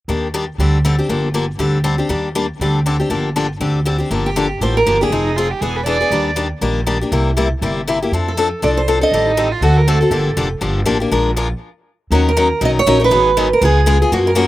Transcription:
0.08 D#2 D#3 G3 A#3 D4 G4
0.34 D#3 G3 A#3 D4 G4
0.58 D2 D3 G3 C4 D4 G4
0.85 D3 G3 C4 D4 G4
0.99 C4 D4 G4
1.09 G1 D3 F3 A#3 D4 G4
1.34 D3 F3 A#3 D4 G4
1.58 D2 D3 G3 C4 D4 G4
1.84 D3 G3 C4 D4 G4
1.98 C4 D4 G4
2.09 D#2 D#3 G3 A#3 D4 G4
2.35 D#3 G3 A#3 D4 G4
2.60 D2 D3 G3 C4 D4 G4
2.86 D3 G3 C4 D4 G4
3.00 C4 D4 G4
3.10 G1 D3 F3 A#3 D4 G4
3.36 D3 F3 A#3 D4 G4
3.60 D2 D3 G3 C4 D4 G4
3.85 D3 G3 C4 D4 G4
3.98 C4 D4 G4
4.10 G1 D3 F3 A#3 D4 G4
4.26 G4
4.36 D3 F3 A#3 D4 G4
4.61 A1 D3 F3 A#3 D4 G4 C5
4.77 A#4
4.86 G1 D3 F3 A#3 D4 G4
5.01 A#3 D4 G4 G#4
5.10 F1 F3 C4 D#4 G#4
5.25 D#4
5.37 F3 C4 D#4 F4 G#4
5.51 G4
5.61 E1 E3 B3 D4 G#4
5.76 B4
5.86 E3 B3 D4 G#4 D5
6.01 B3 D4 G#4
6.11 D#2 D#3 G3 A#3 D4 G4
6.36 D#3 G3 A#3 D4 G4
6.61 A#1 D#3 G3 A#3 D4 G4
6.87 D#3 G3 A#3 D4 G4
7.01 A#3 D4 G4
7.12 C2 C3 G3 A#3 E4 G4
7.37 C3 G3 A#3 E4 G4
7.61 G1 C3 G3 A#3 E4 G4
7.87 C3 G3 A#3 E4 G4
8.02 A#3 E4 G4
8.12 F2 F3 C4 D4 A4
8.28 A4
8.37 F3 C4 D4 A4
8.62 C2 F3 C4 D4 A4 D5
8.77 C5
8.88 F3 C4 D4 A4
9.01 C4 D4 A4 D#5
9.12 A1 D#3 G3 C4 G4 A4
9.27 D#4
9.37 D#3 G3 C4 G4 A4
9.52 F4
9.61 D2 D3 A3 C4 F#4 A4
9.77 A#4
9.88 D3 A3 C4 F#4 A4
10.01 C4 F#4 A4
10.10 G1 D3 F3 A#3 D4 G4
10.36 F1 D3 F3 A#3 D4 G4
10.61 G1 D3 F3 A#3 D4 G4
10.85 A1 D3 F3 A#3 D4 G4
11.00 A#3 D4 G4
11.11 A#1 F3 G#3 D4 F4 A#4
11.37 F3 G#3 D4 F4 A#4
12.11 D#2 D#3 F#3 C#4 D#4 A#4
12.15 F#4
12.29 A#4
12.37 D#3 F#3 C#4 D#4 A#4
12.61 B1 D#3 F#3 C#4 D#4 A#4
12.65 D#5
12.79 C#5
12.86 A#1 D#3 F#3 C#4 D#4 A#4
13.00 C#4 D#4 A#4
13.04 B4
13.11 G#1 D#3 F#3 B3 D#4 G#4
13.37 D#3 F#3 B3 D#4 G#4
13.53 A#4
13.61 C#2 C#3 G#3 B3 F4 G#4
13.86 C#3 G#3 B3 F4 G#4
14.02 B3 F4 G#4
14.12 F#2 C#3 F3 A#3 C#4 F#4
14.27 A#4
14.35 C#3 F3 A#3 C#4 F#4

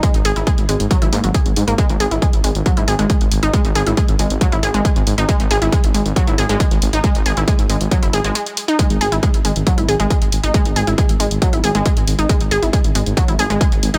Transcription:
0.03 G#3, kick, closed hi-hat
0.14 G#1, closed hi-hat
0.25 G#1 G#4, open hi-hat
0.36 G#1 E4, closed hi-hat
0.47 G#3, kick, closed hi-hat
0.58 G#1, closed hi-hat
0.69 G#1 G#3, open hi-hat
0.80 G#1, closed hi-hat
0.91 F#3, kick, closed hi-hat
1.02 G#1 E4, closed hi-hat
1.12 G#2 A#3, open hi-hat
1.24 G#1 F#3, closed hi-hat
1.34 G#4, kick, closed hi-hat
1.46 G#1, closed hi-hat
1.56 G#2, open hi-hat
1.67 G#1 A#3, closed hi-hat
1.78 G#3, kick, closed hi-hat
1.89 G#1, closed hi-hat
2.00 G#1 G#4, open hi-hat
2.11 G#1 E4, closed hi-hat
2.22 G#3, kick, closed hi-hat
2.33 G#1, closed hi-hat
2.44 G#1 G#3, open hi-hat
2.55 G#1, closed hi-hat
2.66 F#3, kick, closed hi-hat
2.77 G#1 E4, closed hi-hat
2.88 G#1 G#4, open hi-hat
2.99 G#1 G#3, closed hi-hat
3.10 G#3, kick, closed hi-hat
3.21 G#1, closed hi-hat
3.32 G#1, open hi-hat
3.43 G#1 D#4, closed hi-hat
3.53 G#3, kick, closed hi-hat
3.65 G#1, closed hi-hat
3.75 G#1 G#4, open hi-hat
3.86 G#1 E4, closed hi-hat
3.97 G#3, kick, closed hi-hat
4.08 G#1, closed hi-hat
4.19 G#1 G#3, open hi-hat
4.30 G#1, closed hi-hat
4.41 F#3, kick, closed hi-hat
4.52 G#1 E4, closed hi-hat
4.63 G#1 G#4, open hi-hat
4.74 G#1 G#3, closed hi-hat
4.85 G#3, kick, closed hi-hat
4.96 G#1, closed hi-hat
5.07 G#1, open hi-hat
5.18 G#1 D#4, closed hi-hat
5.29 G#3, kick, closed hi-hat
5.40 G#1, closed hi-hat
5.51 G#1 G#4, open hi-hat
5.62 G#1 E4, closed hi-hat
5.72 G#3, kick, closed hi-hat
5.83 G#1, closed hi-hat
5.94 G#1 G#3, open hi-hat
6.06 G#1, closed hi-hat
6.16 F#3, kick, closed hi-hat
6.27 G#1 E4, closed hi-hat
6.38 G#1 G#4, open hi-hat
6.49 G#1 G#3, closed hi-hat
6.60 G#3, kick, closed hi-hat
6.71 G#1, closed hi-hat
6.82 G#1, open hi-hat
6.93 G#1 D#4, closed hi-hat
7.04 G#3, kick, closed hi-hat
7.15 G#1, closed hi-hat
7.26 G#1 G#4, open hi-hat
7.37 G#1 E4, closed hi-hat
7.48 G#3, kick, closed hi-hat
7.59 G#1, closed hi-hat
7.69 G#1 G#3, open hi-hat
7.81 G#1, closed hi-hat
7.91 F#3, kick, closed hi-hat
8.02 F#1 E4, closed hi-hat
8.13 G#1 G#4, open hi-hat
8.24 G#1 G#3, closed hi-hat
8.35 G#3, closed hi-hat
8.46 closed hi-hat
8.57 open hi-hat
8.68 D#4, closed hi-hat
8.79 G#3, kick, closed hi-hat
8.90 G#1, closed hi-hat
9.01 G#1 G#4, open hi-hat
9.12 G#1 E4, closed hi-hat
9.23 G#3, kick, closed hi-hat
9.34 G#1, closed hi-hat
9.45 G#1 G#3, open hi-hat
9.56 G#1, closed hi-hat
9.67 F#3, kick, closed hi-hat
9.78 G#1 E4, closed hi-hat
9.88 G#1 G#4, open hi-hat
10.00 G#1 G#3, closed hi-hat
10.10 G#3, kick, closed hi-hat
10.21 G#1, closed hi-hat
10.32 G#1, open hi-hat
10.43 G#1 D#4, closed hi-hat
10.54 G#3, kick, closed hi-hat
10.65 G#1, closed hi-hat
10.76 G#1 G#4, open hi-hat
10.87 G#1 E4, closed hi-hat
10.98 G#3, kick, closed hi-hat
11.09 G#1, closed hi-hat
11.20 G#1 G#3, open hi-hat
11.31 G#1, closed hi-hat
11.42 F#3, kick, closed hi-hat
11.53 G#1 E4, closed hi-hat
11.64 G#1 G#4, open hi-hat
11.75 G#1 G#3, closed hi-hat
11.86 G#3, kick, closed hi-hat
11.97 G#1, closed hi-hat
12.07 G#1, open hi-hat
12.19 G#1 D#4, closed hi-hat
12.29 G#3, kick, closed hi-hat
12.40 G#1, closed hi-hat
12.51 G#1 G#4, open hi-hat
12.62 G#1 E4, closed hi-hat
12.73 G#3, kick, closed hi-hat
12.84 G#1, closed hi-hat
12.95 G#1 G#3, open hi-hat
13.06 G#1, closed hi-hat
13.17 F#3, kick, closed hi-hat
13.28 G#1 E4, closed hi-hat
13.39 G#1 G#4, open hi-hat
13.50 G#1 G#3, closed hi-hat
13.61 G#3, kick, closed hi-hat
13.72 G#1, closed hi-hat
13.83 G#1, open hi-hat
13.94 G#1 D#4, closed hi-hat

